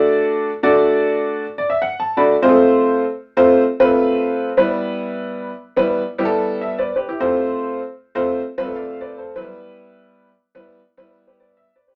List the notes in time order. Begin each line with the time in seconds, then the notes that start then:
Already playing: A3 D4 F#4 D5
0.63 A3 D4 F#4 D5
1.58 D5
1.70 E5
1.82 F#5
2.00 A5
2.17 A3 D4 F#4 D5 B5
2.42 G#3 C4 F4 C5
2.49 A3
3.37 A3 C4 F4 C5
3.80 A3 C4 F4 B4
4.57 G3 B3 E4 B4
5.77 G3 B3 E4 B4
6.18 G3 B3 E4 G4
6.25 A4
6.61 E5
6.78 B4 D5
6.96 G4 B4
7.09 E4 G4
7.20 A3 C4 F4 C5
8.15 A3 C4 F4 C5
8.58 G3 C4 F4 B4
8.64 A3
8.75 D5 F5
9.01 B4 D5
9.18 A4 C5
9.36 F#3 B3 E4 B4
9.42 G3
10.55 G3 B3 E4 B4
10.97 G3 B3 E4 B4
11.27 G4 B4
11.40 B4 D5
11.57 E5
11.76 B4 D5
11.88 G4 B4